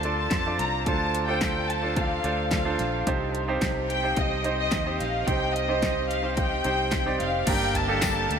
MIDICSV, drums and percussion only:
0, 0, Header, 1, 2, 480
1, 0, Start_track
1, 0, Tempo, 550863
1, 755, Time_signature, 4, 2, 24, 8
1, 7312, End_track
2, 0, Start_track
2, 0, Title_t, "Drums"
2, 28, Note_on_c, 9, 42, 46
2, 115, Note_off_c, 9, 42, 0
2, 268, Note_on_c, 9, 38, 79
2, 269, Note_on_c, 9, 42, 60
2, 274, Note_on_c, 9, 36, 91
2, 274, Note_on_c, 9, 39, 63
2, 356, Note_off_c, 9, 38, 0
2, 356, Note_off_c, 9, 42, 0
2, 361, Note_off_c, 9, 36, 0
2, 361, Note_off_c, 9, 39, 0
2, 513, Note_on_c, 9, 38, 32
2, 516, Note_on_c, 9, 42, 63
2, 601, Note_off_c, 9, 38, 0
2, 604, Note_off_c, 9, 42, 0
2, 752, Note_on_c, 9, 42, 67
2, 754, Note_on_c, 9, 36, 82
2, 839, Note_off_c, 9, 42, 0
2, 841, Note_off_c, 9, 36, 0
2, 998, Note_on_c, 9, 42, 69
2, 1085, Note_off_c, 9, 42, 0
2, 1230, Note_on_c, 9, 42, 63
2, 1232, Note_on_c, 9, 38, 85
2, 1234, Note_on_c, 9, 36, 88
2, 1238, Note_on_c, 9, 39, 81
2, 1317, Note_off_c, 9, 42, 0
2, 1319, Note_off_c, 9, 38, 0
2, 1321, Note_off_c, 9, 36, 0
2, 1325, Note_off_c, 9, 39, 0
2, 1481, Note_on_c, 9, 42, 57
2, 1568, Note_off_c, 9, 42, 0
2, 1712, Note_on_c, 9, 42, 66
2, 1713, Note_on_c, 9, 36, 92
2, 1799, Note_off_c, 9, 42, 0
2, 1800, Note_off_c, 9, 36, 0
2, 1952, Note_on_c, 9, 42, 50
2, 2040, Note_off_c, 9, 42, 0
2, 2189, Note_on_c, 9, 38, 89
2, 2190, Note_on_c, 9, 42, 70
2, 2194, Note_on_c, 9, 36, 84
2, 2195, Note_on_c, 9, 39, 65
2, 2276, Note_off_c, 9, 38, 0
2, 2277, Note_off_c, 9, 42, 0
2, 2282, Note_off_c, 9, 36, 0
2, 2282, Note_off_c, 9, 39, 0
2, 2429, Note_on_c, 9, 38, 29
2, 2432, Note_on_c, 9, 42, 64
2, 2516, Note_off_c, 9, 38, 0
2, 2519, Note_off_c, 9, 42, 0
2, 2674, Note_on_c, 9, 36, 81
2, 2674, Note_on_c, 9, 42, 77
2, 2761, Note_off_c, 9, 36, 0
2, 2761, Note_off_c, 9, 42, 0
2, 2916, Note_on_c, 9, 42, 64
2, 3003, Note_off_c, 9, 42, 0
2, 3150, Note_on_c, 9, 42, 65
2, 3152, Note_on_c, 9, 38, 93
2, 3154, Note_on_c, 9, 36, 87
2, 3158, Note_on_c, 9, 39, 79
2, 3237, Note_off_c, 9, 42, 0
2, 3239, Note_off_c, 9, 38, 0
2, 3241, Note_off_c, 9, 36, 0
2, 3245, Note_off_c, 9, 39, 0
2, 3399, Note_on_c, 9, 42, 62
2, 3486, Note_off_c, 9, 42, 0
2, 3629, Note_on_c, 9, 42, 64
2, 3634, Note_on_c, 9, 36, 79
2, 3716, Note_off_c, 9, 42, 0
2, 3721, Note_off_c, 9, 36, 0
2, 3873, Note_on_c, 9, 42, 52
2, 3960, Note_off_c, 9, 42, 0
2, 4109, Note_on_c, 9, 38, 90
2, 4109, Note_on_c, 9, 42, 67
2, 4114, Note_on_c, 9, 39, 64
2, 4115, Note_on_c, 9, 36, 92
2, 4196, Note_off_c, 9, 38, 0
2, 4196, Note_off_c, 9, 42, 0
2, 4202, Note_off_c, 9, 36, 0
2, 4202, Note_off_c, 9, 39, 0
2, 4358, Note_on_c, 9, 38, 31
2, 4361, Note_on_c, 9, 42, 64
2, 4445, Note_off_c, 9, 38, 0
2, 4448, Note_off_c, 9, 42, 0
2, 4597, Note_on_c, 9, 36, 78
2, 4597, Note_on_c, 9, 42, 78
2, 4684, Note_off_c, 9, 36, 0
2, 4685, Note_off_c, 9, 42, 0
2, 4844, Note_on_c, 9, 42, 62
2, 4931, Note_off_c, 9, 42, 0
2, 5076, Note_on_c, 9, 42, 64
2, 5077, Note_on_c, 9, 36, 92
2, 5078, Note_on_c, 9, 38, 86
2, 5083, Note_on_c, 9, 39, 73
2, 5163, Note_off_c, 9, 42, 0
2, 5164, Note_off_c, 9, 36, 0
2, 5165, Note_off_c, 9, 38, 0
2, 5171, Note_off_c, 9, 39, 0
2, 5321, Note_on_c, 9, 42, 60
2, 5409, Note_off_c, 9, 42, 0
2, 5550, Note_on_c, 9, 42, 65
2, 5554, Note_on_c, 9, 36, 86
2, 5638, Note_off_c, 9, 42, 0
2, 5641, Note_off_c, 9, 36, 0
2, 5789, Note_on_c, 9, 42, 49
2, 5876, Note_off_c, 9, 42, 0
2, 6026, Note_on_c, 9, 38, 84
2, 6026, Note_on_c, 9, 42, 64
2, 6031, Note_on_c, 9, 39, 69
2, 6033, Note_on_c, 9, 36, 94
2, 6113, Note_off_c, 9, 38, 0
2, 6113, Note_off_c, 9, 42, 0
2, 6119, Note_off_c, 9, 39, 0
2, 6121, Note_off_c, 9, 36, 0
2, 6272, Note_on_c, 9, 38, 32
2, 6275, Note_on_c, 9, 42, 63
2, 6359, Note_off_c, 9, 38, 0
2, 6362, Note_off_c, 9, 42, 0
2, 6507, Note_on_c, 9, 42, 88
2, 6507, Note_on_c, 9, 49, 85
2, 6511, Note_on_c, 9, 36, 93
2, 6594, Note_off_c, 9, 42, 0
2, 6594, Note_off_c, 9, 49, 0
2, 6598, Note_off_c, 9, 36, 0
2, 6749, Note_on_c, 9, 43, 71
2, 6754, Note_on_c, 9, 42, 74
2, 6836, Note_off_c, 9, 43, 0
2, 6841, Note_off_c, 9, 42, 0
2, 6986, Note_on_c, 9, 42, 76
2, 6988, Note_on_c, 9, 38, 112
2, 6988, Note_on_c, 9, 54, 91
2, 6993, Note_on_c, 9, 36, 94
2, 6994, Note_on_c, 9, 39, 92
2, 7073, Note_off_c, 9, 42, 0
2, 7075, Note_off_c, 9, 38, 0
2, 7075, Note_off_c, 9, 54, 0
2, 7080, Note_off_c, 9, 36, 0
2, 7081, Note_off_c, 9, 39, 0
2, 7238, Note_on_c, 9, 42, 70
2, 7312, Note_off_c, 9, 42, 0
2, 7312, End_track
0, 0, End_of_file